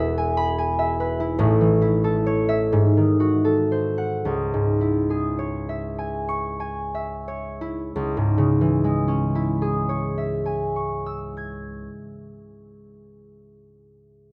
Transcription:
0, 0, Header, 1, 2, 480
1, 0, Start_track
1, 0, Key_signature, 4, "minor"
1, 0, Tempo, 821918
1, 817, Time_signature, 6, 3, 24, 8
1, 817, Tempo, 865801
1, 1297, Tempo, 941915
1, 1777, Tempo, 1052632
1, 2257, Tempo, 1145038
1, 2737, Tempo, 1219512
1, 3217, Tempo, 1345291
1, 3697, Tempo, 1376147
1, 5913, End_track
2, 0, Start_track
2, 0, Title_t, "Harp"
2, 0, Program_c, 0, 46
2, 0, Note_on_c, 0, 28, 89
2, 0, Note_on_c, 0, 40, 97
2, 0, Note_on_c, 0, 47, 81
2, 0, Note_on_c, 0, 64, 76
2, 0, Note_on_c, 0, 68, 79
2, 0, Note_on_c, 0, 71, 86
2, 0, Note_on_c, 0, 76, 84
2, 0, Note_on_c, 0, 80, 81
2, 96, Note_off_c, 0, 80, 0
2, 103, Note_on_c, 0, 80, 87
2, 217, Note_on_c, 0, 83, 108
2, 334, Note_off_c, 0, 80, 0
2, 341, Note_on_c, 0, 80, 88
2, 453, Note_off_c, 0, 76, 0
2, 460, Note_on_c, 0, 76, 79
2, 577, Note_off_c, 0, 71, 0
2, 584, Note_on_c, 0, 71, 75
2, 693, Note_off_c, 0, 64, 0
2, 700, Note_on_c, 0, 64, 78
2, 809, Note_on_c, 0, 33, 89
2, 812, Note_on_c, 0, 45, 101
2, 835, Note_off_c, 0, 28, 0
2, 835, Note_off_c, 0, 83, 0
2, 838, Note_off_c, 0, 40, 0
2, 838, Note_off_c, 0, 80, 0
2, 839, Note_off_c, 0, 47, 0
2, 839, Note_off_c, 0, 68, 0
2, 840, Note_off_c, 0, 71, 0
2, 933, Note_on_c, 0, 52, 70
2, 1041, Note_off_c, 0, 64, 0
2, 1048, Note_on_c, 0, 64, 78
2, 1173, Note_on_c, 0, 69, 81
2, 1297, Note_on_c, 0, 73, 81
2, 1404, Note_off_c, 0, 76, 0
2, 1410, Note_on_c, 0, 76, 102
2, 1531, Note_on_c, 0, 44, 81
2, 1548, Note_off_c, 0, 33, 0
2, 1549, Note_off_c, 0, 45, 0
2, 1549, Note_off_c, 0, 64, 0
2, 1549, Note_off_c, 0, 76, 0
2, 1551, Note_off_c, 0, 52, 0
2, 1551, Note_off_c, 0, 73, 0
2, 1656, Note_on_c, 0, 51, 62
2, 1773, Note_on_c, 0, 66, 71
2, 1880, Note_off_c, 0, 69, 0
2, 1886, Note_on_c, 0, 69, 66
2, 2009, Note_on_c, 0, 72, 63
2, 2129, Note_on_c, 0, 78, 80
2, 2253, Note_on_c, 0, 37, 76
2, 2273, Note_off_c, 0, 69, 0
2, 2274, Note_off_c, 0, 66, 0
2, 2275, Note_off_c, 0, 44, 0
2, 2275, Note_off_c, 0, 78, 0
2, 2276, Note_off_c, 0, 72, 0
2, 2277, Note_off_c, 0, 51, 0
2, 2373, Note_on_c, 0, 44, 58
2, 2487, Note_on_c, 0, 64, 57
2, 2610, Note_on_c, 0, 68, 56
2, 2729, Note_on_c, 0, 73, 63
2, 2849, Note_on_c, 0, 76, 62
2, 2966, Note_on_c, 0, 80, 62
2, 3084, Note_on_c, 0, 85, 80
2, 3203, Note_off_c, 0, 80, 0
2, 3207, Note_on_c, 0, 80, 62
2, 3328, Note_off_c, 0, 76, 0
2, 3332, Note_on_c, 0, 76, 64
2, 3446, Note_off_c, 0, 73, 0
2, 3450, Note_on_c, 0, 73, 56
2, 3565, Note_off_c, 0, 64, 0
2, 3569, Note_on_c, 0, 64, 63
2, 3688, Note_off_c, 0, 37, 0
2, 3692, Note_on_c, 0, 37, 72
2, 3715, Note_off_c, 0, 44, 0
2, 3767, Note_on_c, 0, 44, 73
2, 3840, Note_on_c, 0, 49, 75
2, 3921, Note_on_c, 0, 52, 71
2, 4002, Note_on_c, 0, 56, 72
2, 4057, Note_off_c, 0, 68, 0
2, 4084, Note_on_c, 0, 61, 69
2, 4175, Note_off_c, 0, 64, 0
2, 4179, Note_on_c, 0, 64, 68
2, 4271, Note_on_c, 0, 68, 69
2, 4363, Note_off_c, 0, 73, 0
2, 4367, Note_on_c, 0, 73, 65
2, 4463, Note_off_c, 0, 76, 0
2, 4467, Note_on_c, 0, 76, 56
2, 4470, Note_off_c, 0, 85, 0
2, 4560, Note_off_c, 0, 80, 0
2, 4565, Note_on_c, 0, 80, 55
2, 4670, Note_on_c, 0, 85, 66
2, 4776, Note_on_c, 0, 88, 62
2, 4883, Note_on_c, 0, 92, 51
2, 5053, Note_off_c, 0, 37, 0
2, 5127, Note_off_c, 0, 44, 0
2, 5200, Note_off_c, 0, 49, 0
2, 5204, Note_off_c, 0, 56, 0
2, 5250, Note_off_c, 0, 61, 0
2, 5281, Note_off_c, 0, 52, 0
2, 5346, Note_off_c, 0, 64, 0
2, 5438, Note_off_c, 0, 68, 0
2, 5534, Note_off_c, 0, 73, 0
2, 5634, Note_off_c, 0, 76, 0
2, 5654, Note_off_c, 0, 80, 0
2, 5654, Note_off_c, 0, 92, 0
2, 5655, Note_off_c, 0, 85, 0
2, 5655, Note_off_c, 0, 88, 0
2, 5913, End_track
0, 0, End_of_file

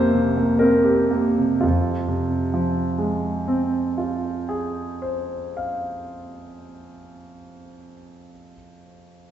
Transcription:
0, 0, Header, 1, 2, 480
1, 0, Start_track
1, 0, Key_signature, -4, "minor"
1, 0, Tempo, 925926
1, 316, Tempo, 1010101
1, 796, Time_signature, 3, 2, 24, 8
1, 796, Tempo, 930233
1, 1276, Tempo, 909091
1, 2716, Tempo, 892857
1, 4885, End_track
2, 0, Start_track
2, 0, Title_t, "Grand piano"
2, 0, Program_c, 0, 0
2, 0, Control_c, 0, 64, 127
2, 0, Note_on_c, 0, 41, 41
2, 0, Note_on_c, 0, 48, 29
2, 0, Note_on_c, 0, 58, 34
2, 0, Note_on_c, 0, 60, 31
2, 0, Note_on_c, 0, 67, 32
2, 0, Note_on_c, 0, 72, 58
2, 0, Note_on_c, 0, 76, 60
2, 69, Note_off_c, 0, 48, 0
2, 69, Note_on_c, 0, 48, 33
2, 144, Note_off_c, 0, 58, 0
2, 194, Note_on_c, 0, 58, 29
2, 264, Note_off_c, 0, 48, 0
2, 306, Note_on_c, 0, 70, 44
2, 311, Note_off_c, 0, 72, 0
2, 314, Note_off_c, 0, 60, 0
2, 314, Note_on_c, 0, 60, 31
2, 386, Note_off_c, 0, 58, 0
2, 426, Note_off_c, 0, 67, 0
2, 426, Note_on_c, 0, 67, 29
2, 506, Note_off_c, 0, 60, 0
2, 553, Note_off_c, 0, 70, 0
2, 553, Note_on_c, 0, 58, 26
2, 630, Note_off_c, 0, 67, 0
2, 683, Note_on_c, 0, 48, 26
2, 748, Note_off_c, 0, 58, 0
2, 759, Note_off_c, 0, 41, 0
2, 790, Note_on_c, 0, 65, 34
2, 797, Note_off_c, 0, 48, 0
2, 804, Note_on_c, 0, 41, 31
2, 808, Control_c, 0, 64, 0
2, 811, Note_off_c, 0, 76, 0
2, 952, Control_c, 0, 64, 127
2, 1033, Note_on_c, 0, 48, 32
2, 1269, Note_on_c, 0, 53, 31
2, 1505, Note_on_c, 0, 56, 30
2, 1765, Note_on_c, 0, 60, 27
2, 2021, Note_off_c, 0, 65, 0
2, 2029, Note_on_c, 0, 65, 25
2, 2299, Note_on_c, 0, 68, 26
2, 2580, Note_on_c, 0, 72, 25
2, 2872, Note_on_c, 0, 77, 24
2, 3349, Note_off_c, 0, 41, 0
2, 3588, Note_off_c, 0, 48, 0
2, 3833, Note_off_c, 0, 53, 0
2, 4074, Note_off_c, 0, 56, 0
2, 4339, Note_off_c, 0, 60, 0
2, 4459, Note_off_c, 0, 72, 0
2, 4460, Note_off_c, 0, 68, 0
2, 4461, Note_off_c, 0, 77, 0
2, 4464, Note_off_c, 0, 65, 0
2, 4868, Control_c, 0, 64, 0
2, 4885, End_track
0, 0, End_of_file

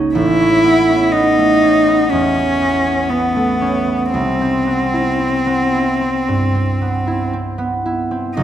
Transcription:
0, 0, Header, 1, 3, 480
1, 0, Start_track
1, 0, Tempo, 978793
1, 76, Time_signature, 4, 2, 24, 8
1, 1517, Tempo, 1054482
1, 3948, End_track
2, 0, Start_track
2, 0, Title_t, "Cello"
2, 0, Program_c, 0, 42
2, 73, Note_on_c, 0, 64, 67
2, 547, Note_on_c, 0, 63, 64
2, 555, Note_off_c, 0, 64, 0
2, 1034, Note_on_c, 0, 61, 59
2, 1041, Note_off_c, 0, 63, 0
2, 1519, Note_on_c, 0, 59, 52
2, 1525, Note_off_c, 0, 61, 0
2, 1985, Note_off_c, 0, 59, 0
2, 1988, Note_on_c, 0, 60, 57
2, 3424, Note_off_c, 0, 60, 0
2, 3919, Note_on_c, 0, 63, 73
2, 3948, Note_off_c, 0, 63, 0
2, 3948, End_track
3, 0, Start_track
3, 0, Title_t, "Harp"
3, 0, Program_c, 1, 46
3, 0, Note_on_c, 1, 30, 47
3, 0, Note_on_c, 1, 37, 36
3, 0, Note_on_c, 1, 58, 38
3, 0, Note_on_c, 1, 61, 37
3, 0, Note_on_c, 1, 63, 38
3, 73, Note_on_c, 1, 33, 42
3, 91, Note_off_c, 1, 30, 0
3, 94, Note_off_c, 1, 63, 0
3, 97, Note_off_c, 1, 37, 0
3, 97, Note_off_c, 1, 58, 0
3, 191, Note_off_c, 1, 61, 0
3, 197, Note_on_c, 1, 61, 35
3, 316, Note_on_c, 1, 59, 34
3, 433, Note_off_c, 1, 61, 0
3, 439, Note_on_c, 1, 61, 34
3, 550, Note_off_c, 1, 59, 0
3, 556, Note_on_c, 1, 59, 38
3, 678, Note_on_c, 1, 57, 36
3, 792, Note_off_c, 1, 61, 0
3, 798, Note_on_c, 1, 61, 36
3, 913, Note_off_c, 1, 59, 0
3, 919, Note_on_c, 1, 59, 32
3, 1042, Note_on_c, 1, 40, 34
3, 1156, Note_off_c, 1, 61, 0
3, 1162, Note_on_c, 1, 61, 34
3, 1276, Note_off_c, 1, 59, 0
3, 1282, Note_on_c, 1, 59, 33
3, 1394, Note_off_c, 1, 61, 0
3, 1400, Note_on_c, 1, 61, 30
3, 1518, Note_off_c, 1, 59, 0
3, 1524, Note_on_c, 1, 59, 35
3, 1634, Note_off_c, 1, 57, 0
3, 1639, Note_on_c, 1, 57, 33
3, 1749, Note_off_c, 1, 61, 0
3, 1755, Note_on_c, 1, 61, 36
3, 1865, Note_off_c, 1, 59, 0
3, 1870, Note_on_c, 1, 59, 33
3, 1952, Note_off_c, 1, 33, 0
3, 1992, Note_on_c, 1, 36, 39
3, 2010, Note_off_c, 1, 61, 0
3, 2011, Note_off_c, 1, 57, 0
3, 2012, Note_off_c, 1, 40, 0
3, 2117, Note_on_c, 1, 60, 33
3, 2226, Note_off_c, 1, 59, 0
3, 2232, Note_on_c, 1, 59, 29
3, 2355, Note_on_c, 1, 64, 32
3, 2471, Note_off_c, 1, 60, 0
3, 2477, Note_on_c, 1, 60, 33
3, 2590, Note_off_c, 1, 59, 0
3, 2596, Note_on_c, 1, 59, 31
3, 2717, Note_off_c, 1, 64, 0
3, 2722, Note_on_c, 1, 64, 34
3, 2840, Note_off_c, 1, 60, 0
3, 2846, Note_on_c, 1, 60, 28
3, 2969, Note_on_c, 1, 43, 34
3, 3085, Note_off_c, 1, 60, 0
3, 3090, Note_on_c, 1, 60, 32
3, 3206, Note_off_c, 1, 59, 0
3, 3212, Note_on_c, 1, 59, 32
3, 3323, Note_off_c, 1, 64, 0
3, 3328, Note_on_c, 1, 64, 32
3, 3441, Note_off_c, 1, 60, 0
3, 3447, Note_on_c, 1, 60, 33
3, 3555, Note_off_c, 1, 59, 0
3, 3560, Note_on_c, 1, 59, 33
3, 3679, Note_off_c, 1, 64, 0
3, 3685, Note_on_c, 1, 64, 33
3, 3767, Note_off_c, 1, 36, 0
3, 3795, Note_off_c, 1, 60, 0
3, 3801, Note_on_c, 1, 60, 30
3, 3919, Note_on_c, 1, 30, 49
3, 3937, Note_off_c, 1, 59, 0
3, 3937, Note_off_c, 1, 60, 0
3, 3939, Note_off_c, 1, 64, 0
3, 3941, Note_off_c, 1, 43, 0
3, 3948, Note_off_c, 1, 30, 0
3, 3948, End_track
0, 0, End_of_file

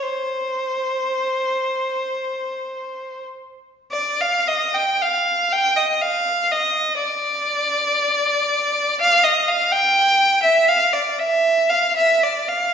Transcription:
0, 0, Header, 1, 2, 480
1, 0, Start_track
1, 0, Tempo, 1207243
1, 15, Time_signature, 6, 3, 24, 8
1, 976, Tempo, 1470588
1, 1456, Tempo, 1069519
1, 1936, Tempo, 974026
1, 2896, Tempo, 917431
1, 3856, Tempo, 953895
1, 4816, Tempo, 1045296
1, 5758, End_track
2, 0, Start_track
2, 0, Title_t, "Violin"
2, 0, Program_c, 0, 40
2, 10, Note_on_c, 0, 72, 66
2, 1229, Note_off_c, 0, 72, 0
2, 1453, Note_on_c, 0, 74, 81
2, 1567, Note_off_c, 0, 74, 0
2, 1583, Note_on_c, 0, 77, 79
2, 1702, Note_off_c, 0, 77, 0
2, 1703, Note_on_c, 0, 75, 74
2, 1821, Note_off_c, 0, 75, 0
2, 1823, Note_on_c, 0, 79, 79
2, 1938, Note_off_c, 0, 79, 0
2, 1948, Note_on_c, 0, 77, 84
2, 2189, Note_off_c, 0, 77, 0
2, 2195, Note_on_c, 0, 79, 97
2, 2310, Note_off_c, 0, 79, 0
2, 2315, Note_on_c, 0, 75, 77
2, 2429, Note_off_c, 0, 75, 0
2, 2436, Note_on_c, 0, 77, 88
2, 2668, Note_off_c, 0, 77, 0
2, 2683, Note_on_c, 0, 75, 84
2, 2908, Note_off_c, 0, 75, 0
2, 2910, Note_on_c, 0, 74, 94
2, 3956, Note_off_c, 0, 74, 0
2, 3975, Note_on_c, 0, 77, 103
2, 4086, Note_on_c, 0, 75, 86
2, 4089, Note_off_c, 0, 77, 0
2, 4206, Note_off_c, 0, 75, 0
2, 4208, Note_on_c, 0, 77, 88
2, 4328, Note_off_c, 0, 77, 0
2, 4328, Note_on_c, 0, 79, 104
2, 4687, Note_on_c, 0, 76, 90
2, 4692, Note_off_c, 0, 79, 0
2, 4811, Note_off_c, 0, 76, 0
2, 4813, Note_on_c, 0, 77, 89
2, 4929, Note_on_c, 0, 74, 75
2, 4930, Note_off_c, 0, 77, 0
2, 5046, Note_on_c, 0, 76, 89
2, 5049, Note_off_c, 0, 74, 0
2, 5280, Note_on_c, 0, 77, 81
2, 5288, Note_off_c, 0, 76, 0
2, 5402, Note_on_c, 0, 76, 88
2, 5404, Note_off_c, 0, 77, 0
2, 5523, Note_off_c, 0, 76, 0
2, 5526, Note_on_c, 0, 74, 75
2, 5642, Note_on_c, 0, 77, 74
2, 5650, Note_off_c, 0, 74, 0
2, 5758, Note_off_c, 0, 77, 0
2, 5758, End_track
0, 0, End_of_file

